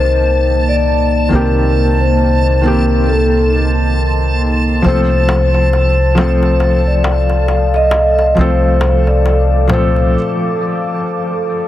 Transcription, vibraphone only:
0, 0, Header, 1, 2, 480
1, 0, Start_track
1, 0, Tempo, 882353
1, 718, Time_signature, 4, 2, 24, 8
1, 6353, End_track
2, 0, Start_track
2, 0, Title_t, "Vibraphone"
2, 0, Program_c, 0, 11
2, 0, Note_on_c, 0, 72, 74
2, 320, Note_off_c, 0, 72, 0
2, 374, Note_on_c, 0, 74, 83
2, 686, Note_off_c, 0, 74, 0
2, 710, Note_on_c, 0, 70, 80
2, 1053, Note_off_c, 0, 70, 0
2, 1090, Note_on_c, 0, 72, 74
2, 1404, Note_off_c, 0, 72, 0
2, 1432, Note_on_c, 0, 70, 74
2, 1655, Note_off_c, 0, 70, 0
2, 1672, Note_on_c, 0, 69, 73
2, 1895, Note_off_c, 0, 69, 0
2, 2641, Note_on_c, 0, 72, 90
2, 2978, Note_off_c, 0, 72, 0
2, 3014, Note_on_c, 0, 72, 77
2, 3326, Note_off_c, 0, 72, 0
2, 3357, Note_on_c, 0, 72, 82
2, 3696, Note_off_c, 0, 72, 0
2, 3739, Note_on_c, 0, 74, 76
2, 4162, Note_off_c, 0, 74, 0
2, 4221, Note_on_c, 0, 75, 86
2, 4530, Note_off_c, 0, 75, 0
2, 4553, Note_on_c, 0, 72, 89
2, 4894, Note_off_c, 0, 72, 0
2, 4937, Note_on_c, 0, 74, 78
2, 5247, Note_off_c, 0, 74, 0
2, 5279, Note_on_c, 0, 72, 77
2, 5499, Note_off_c, 0, 72, 0
2, 6353, End_track
0, 0, End_of_file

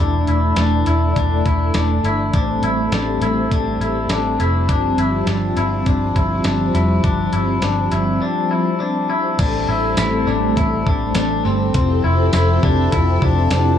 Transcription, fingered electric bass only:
0, 0, Header, 1, 2, 480
1, 0, Start_track
1, 0, Key_signature, 0, "minor"
1, 0, Tempo, 588235
1, 1905, Time_signature, 4, 2, 24, 8
1, 11249, End_track
2, 0, Start_track
2, 0, Title_t, "Fingered electric bass"
2, 0, Program_c, 0, 33
2, 0, Note_on_c, 0, 28, 85
2, 198, Note_off_c, 0, 28, 0
2, 226, Note_on_c, 0, 28, 83
2, 437, Note_off_c, 0, 28, 0
2, 462, Note_on_c, 0, 28, 89
2, 674, Note_off_c, 0, 28, 0
2, 705, Note_on_c, 0, 28, 76
2, 916, Note_off_c, 0, 28, 0
2, 948, Note_on_c, 0, 28, 94
2, 1158, Note_off_c, 0, 28, 0
2, 1186, Note_on_c, 0, 28, 88
2, 1397, Note_off_c, 0, 28, 0
2, 1424, Note_on_c, 0, 28, 94
2, 1636, Note_off_c, 0, 28, 0
2, 1660, Note_on_c, 0, 31, 74
2, 1873, Note_off_c, 0, 31, 0
2, 1907, Note_on_c, 0, 33, 85
2, 2117, Note_off_c, 0, 33, 0
2, 2139, Note_on_c, 0, 33, 90
2, 2353, Note_off_c, 0, 33, 0
2, 2381, Note_on_c, 0, 33, 94
2, 2594, Note_off_c, 0, 33, 0
2, 2620, Note_on_c, 0, 33, 80
2, 2834, Note_off_c, 0, 33, 0
2, 2867, Note_on_c, 0, 33, 82
2, 3077, Note_off_c, 0, 33, 0
2, 3106, Note_on_c, 0, 33, 83
2, 3317, Note_off_c, 0, 33, 0
2, 3343, Note_on_c, 0, 33, 88
2, 3555, Note_off_c, 0, 33, 0
2, 3586, Note_on_c, 0, 29, 79
2, 3825, Note_off_c, 0, 29, 0
2, 3825, Note_on_c, 0, 31, 91
2, 4036, Note_off_c, 0, 31, 0
2, 4060, Note_on_c, 0, 31, 89
2, 4274, Note_off_c, 0, 31, 0
2, 4299, Note_on_c, 0, 31, 85
2, 4513, Note_off_c, 0, 31, 0
2, 4540, Note_on_c, 0, 31, 85
2, 4753, Note_off_c, 0, 31, 0
2, 4784, Note_on_c, 0, 31, 94
2, 4995, Note_off_c, 0, 31, 0
2, 5023, Note_on_c, 0, 31, 87
2, 5235, Note_off_c, 0, 31, 0
2, 5261, Note_on_c, 0, 31, 88
2, 5474, Note_off_c, 0, 31, 0
2, 5499, Note_on_c, 0, 29, 79
2, 5713, Note_off_c, 0, 29, 0
2, 5742, Note_on_c, 0, 31, 81
2, 5955, Note_off_c, 0, 31, 0
2, 5981, Note_on_c, 0, 31, 88
2, 6194, Note_off_c, 0, 31, 0
2, 6223, Note_on_c, 0, 31, 91
2, 6435, Note_off_c, 0, 31, 0
2, 6464, Note_on_c, 0, 31, 79
2, 6676, Note_off_c, 0, 31, 0
2, 7662, Note_on_c, 0, 33, 93
2, 7875, Note_off_c, 0, 33, 0
2, 7903, Note_on_c, 0, 33, 100
2, 8115, Note_off_c, 0, 33, 0
2, 8143, Note_on_c, 0, 33, 99
2, 8355, Note_off_c, 0, 33, 0
2, 8380, Note_on_c, 0, 33, 93
2, 8593, Note_off_c, 0, 33, 0
2, 8626, Note_on_c, 0, 33, 110
2, 8837, Note_off_c, 0, 33, 0
2, 8865, Note_on_c, 0, 33, 88
2, 9076, Note_off_c, 0, 33, 0
2, 9105, Note_on_c, 0, 33, 103
2, 9316, Note_off_c, 0, 33, 0
2, 9343, Note_on_c, 0, 31, 92
2, 9555, Note_off_c, 0, 31, 0
2, 9584, Note_on_c, 0, 29, 98
2, 9796, Note_off_c, 0, 29, 0
2, 9823, Note_on_c, 0, 29, 96
2, 10035, Note_off_c, 0, 29, 0
2, 10064, Note_on_c, 0, 29, 102
2, 10275, Note_off_c, 0, 29, 0
2, 10304, Note_on_c, 0, 29, 92
2, 10516, Note_off_c, 0, 29, 0
2, 10545, Note_on_c, 0, 29, 91
2, 10756, Note_off_c, 0, 29, 0
2, 10786, Note_on_c, 0, 29, 99
2, 10997, Note_off_c, 0, 29, 0
2, 11022, Note_on_c, 0, 29, 110
2, 11235, Note_off_c, 0, 29, 0
2, 11249, End_track
0, 0, End_of_file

